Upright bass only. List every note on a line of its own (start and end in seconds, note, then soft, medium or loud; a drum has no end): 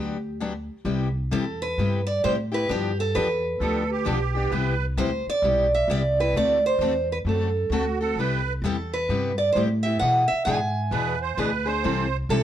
0.00 0.68 D2 medium
0.85 1.30 C2 medium
1.32 1.76 E2 medium
1.78 2.22 G2 medium
2.24 2.68 A2 medium
2.70 3.14 G2 medium
3.15 3.59 E2 medium
3.60 4.05 D2 medium
4.07 4.51 B1 medium
4.51 4.96 C2 medium
4.97 5.25 D2 medium
5.26 muted upright bass stroke soft
5.42 5.87 B1 medium
5.88 6.33 C2 medium
6.33 6.78 D2 medium
6.78 7.24 E2 medium
7.25 7.69 F#2 medium
7.70 8.15 D2 medium
8.16 8.61 C2 medium
8.62 9.07 E2 medium
9.09 9.53 G2 medium
9.55 10.00 A2 medium
10.01 10.28 B2 medium
10.31 muted upright bass stroke soft
10.46 10.91 G#2 medium
10.91 11.36 E2 medium
11.37 11.82 D2 medium
11.85 12.29 C2 medium
12.29 12.43 B1 medium